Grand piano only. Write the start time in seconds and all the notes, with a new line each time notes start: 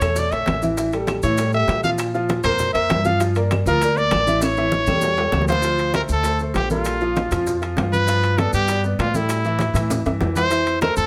0.02 A3 A4 C#5
0.33 A3 A4 C#5
0.62 E3 E4 E5
0.78 E3 E4 E5
0.93 G3 G4 A4
1.23 E3 E4 E5
1.39 G3 G4 A4
1.54 G3 G4 A4
1.84 F3 F4 F5
2.14 F3 F4 F5
2.45 A#3 A#4 C5
2.74 A#3 A#4 C5
3.05 F3 F4 F5
3.20 F3 F4 F5
3.36 A#3 A#4 D5
3.67 F3 F4 F5
3.82 A#3 A#4 D5
3.96 A#3 A#4 D5
4.27 E3 E4 E5
4.57 E3 E4 E5
4.88 G3 G4 A4
5.18 G3 G4 A4
5.49 F3 F4 F5
5.64 F3 F4 F5
5.94 A3 A4 C5
6.25 A3 A4 C5
6.41 A3 A4 C5
6.70 G3 A4 A#4
7.01 F3 F4 F5
7.32 F3 F4 F5
7.62 F3 F4 F5
7.78 F3 F4 F5
8.08 F3 F4 F5
8.39 B3 B4 D5
8.69 B3 B4 D5
8.84 B3 B4 D5
9.14 G3 G4 A4
9.45 E3 E4 E5
9.75 E3 E4 E5
10.06 E3 E4 E5
10.20 E3 E4 E5
10.50 E3 E4 E5
10.82 A3 A4 C5